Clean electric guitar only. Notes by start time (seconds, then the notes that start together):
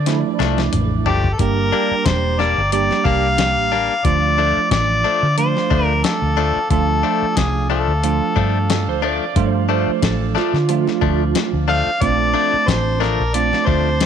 0.39 F3 A3 D4
1.06 F3 A3 D4
1.72 G3 A#3 D4
2.39 G3 A#3 D4
3.05 G3 A#3 D4
3.72 G3 A#3 D4
4.38 F3 A3 D4
5.04 F3 A3 D4
5.70 F3 A3 D4
6.37 F3 A3 D4
7.03 F3 A3 D4
7.70 F3 A3 D4
8.36 F3 A3 D4
9.02 F3 A3 D4
9.69 F3 A3 D4
10.35 F3 A3 D4
11.01 F3 A3 D4
11.68 F3 A3 D4
12.34 F3 A3 D4
13.00 F3 A3 D4
13.67 F3 A3 D4